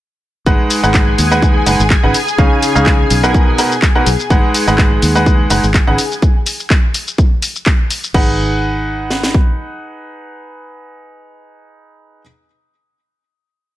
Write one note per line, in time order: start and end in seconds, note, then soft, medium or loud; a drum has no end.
0.46 0.55 G#1 medium
0.46 0.80 G#3 medium
0.46 0.80 D#4 medium
0.46 0.80 G#4 medium
0.46 6.24 G#4 medium
0.46 0.80 B4 medium
0.46 0.80 F#5 loud
0.46 6.24 G#5 medium
0.46 kick loud
0.46 shaker soft
0.70 open hi-hat loud
0.70 shaker medium
0.83 1.13 G#1 medium
0.83 1.28 G#3 medium
0.83 1.28 D#4 medium
0.83 1.28 G#4 medium
0.83 1.28 B4 medium
0.83 1.28 F#5 medium
0.83 shaker soft
0.94 kick loud
0.94 clap loud
0.94 shaker soft
1.18 1.61 D#2 medium
1.18 open hi-hat loud
1.18 shaker medium
1.32 1.64 G#3 medium
1.32 1.64 D#4 medium
1.32 1.64 G#4 medium
1.32 1.64 B4 medium
1.32 1.64 F#5 medium
1.32 shaker soft
1.42 kick loud
1.42 shaker soft
1.66 1.75 F#1 medium
1.66 1.79 G#3 medium
1.66 1.79 D#4 medium
1.66 1.79 G#4 medium
1.66 1.79 B4 medium
1.66 1.79 F#5 medium
1.66 open hi-hat loud
1.66 shaker medium
1.80 1.95 G#1 medium
1.80 shaker soft
1.90 kick loud
1.90 clap loud
1.90 shaker soft
2.03 2.11 G#1 medium
2.03 2.13 C#3 medium
2.03 2.13 D#4 medium
2.03 2.13 G#4 medium
2.03 2.13 B4 medium
2.03 2.13 F#5 medium
2.14 open hi-hat loud
2.14 shaker medium
2.28 shaker soft
2.38 2.47 C#2 loud
2.38 2.72 C#3 medium
2.38 2.72 D#4 medium
2.38 2.72 G#4 medium
2.38 2.72 C#5 medium
2.38 2.72 F5 loud
2.38 kick loud
2.38 shaker soft
2.63 open hi-hat loud
2.63 shaker medium
2.75 3.05 C#2 medium
2.75 3.20 C#3 medium
2.75 3.20 D#4 medium
2.75 3.20 G#4 medium
2.75 3.20 C#5 medium
2.75 3.20 F5 medium
2.75 shaker soft
2.86 kick loud
2.86 clap loud
2.86 shaker soft
3.10 3.53 B1 loud
3.10 open hi-hat loud
3.10 shaker medium
3.23 3.56 B2 medium
3.23 3.56 D#4 medium
3.23 3.56 A#4 medium
3.23 3.56 B4 medium
3.23 3.56 F#5 medium
3.23 shaker soft
3.34 kick loud
3.34 shaker soft
3.58 3.71 B2 medium
3.58 3.71 D#4 medium
3.58 3.71 A#4 medium
3.58 3.71 B4 medium
3.58 3.71 F#5 medium
3.58 open hi-hat loud
3.58 shaker medium
3.72 shaker soft
3.82 kick loud
3.82 clap loud
3.82 shaker soft
3.95 4.06 B2 medium
3.95 4.06 D#4 medium
3.95 4.06 A#4 medium
3.95 4.06 B4 medium
3.95 4.06 F#5 medium
4.06 4.15 B1 medium
4.06 open hi-hat loud
4.06 shaker medium
4.20 shaker soft
4.30 4.39 G#1 loud
4.30 4.64 G#3 medium
4.30 4.64 D#4 medium
4.30 4.64 G#4 medium
4.30 4.64 B4 medium
4.30 4.64 F#5 loud
4.30 kick loud
4.30 shaker soft
4.54 open hi-hat loud
4.54 shaker medium
4.67 4.97 G#1 medium
4.67 5.12 G#3 medium
4.67 5.12 D#4 medium
4.67 5.12 G#4 medium
4.67 5.12 B4 medium
4.67 5.12 F#5 medium
4.67 shaker soft
4.78 kick loud
4.78 clap loud
4.78 shaker soft
5.02 5.45 D#2 loud
5.02 open hi-hat loud
5.02 shaker medium
5.15 5.48 G#3 medium
5.15 5.48 D#4 medium
5.15 5.48 G#4 medium
5.15 5.48 B4 medium
5.15 5.48 F#5 medium
5.15 shaker soft
5.26 kick loud
5.26 shaker soft
5.50 5.59 F#1 medium
5.50 5.63 G#3 medium
5.50 5.63 D#4 medium
5.50 5.63 G#4 medium
5.50 5.63 B4 medium
5.50 5.63 F#5 medium
5.50 open hi-hat loud
5.50 shaker medium
5.63 5.79 G#1 loud
5.63 shaker soft
5.74 kick loud
5.74 clap loud
5.74 shaker soft
5.87 5.95 G#1 loud
5.87 5.97 C#3 medium
5.87 5.97 D#4 medium
5.87 5.97 G#4 medium
5.87 5.97 B4 medium
5.87 5.97 F#5 medium
5.98 open hi-hat loud
5.98 shaker medium
6.12 shaker soft
6.22 kick loud
6.22 shaker soft
6.46 open hi-hat loud
6.46 shaker medium
6.60 shaker soft
6.70 kick loud
6.70 clap loud
6.70 shaker soft
6.94 open hi-hat loud
6.94 shaker medium
7.08 shaker soft
7.18 kick loud
7.18 shaker soft
7.42 open hi-hat loud
7.42 shaker medium
7.56 shaker soft
7.66 kick loud
7.66 clap loud
7.66 shaker soft
7.90 open hi-hat loud
7.90 shaker medium
8.04 shaker soft
8.14 9.54 G#1 loud
8.14 12.22 D#4 medium
8.14 12.22 G#4 medium
8.14 12.22 B4 medium
8.14 12.22 F#5 loud
8.14 kick loud
8.14 crash medium
9.10 snare medium
9.23 snare medium
9.34 kick medium